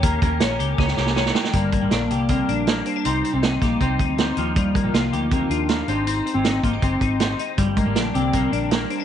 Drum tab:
HH |x-x-x-x---------|x-x-x-x-x-x-x-x-|x-x-x-x-x-x-x-x-|x-x-x-x-x-x-x-x-|
SD |----o---oooooooo|----o-------o---|----o-o-----o---|----o-------o---|
BD |o-o-----o-------|o-o-----o-------|------o-o-o-----|o-o-----o-------|

HH |x-x-x-x-x-x-x-x-|x-x-x-x-x-x-x-x-|
SD |----o-------o---|----o-------o---|
BD |------o-o-o-----|o-o-----o-------|